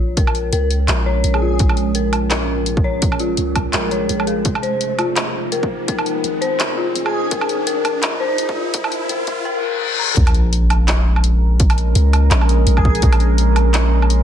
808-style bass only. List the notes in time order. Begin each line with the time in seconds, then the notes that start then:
Already playing: A#1
0.53 C#2
0.88 A#1
1.24 A#1
1.60 A#1
3.38 C#2
3.74 A#1
4.10 A#1
4.45 F1
6.24 G#1
6.60 F1
6.95 F1
7.31 F1
9.10 G#1
10.17 A#1
11.96 C#2
12.31 A#1
12.67 A#1
13.03 A#1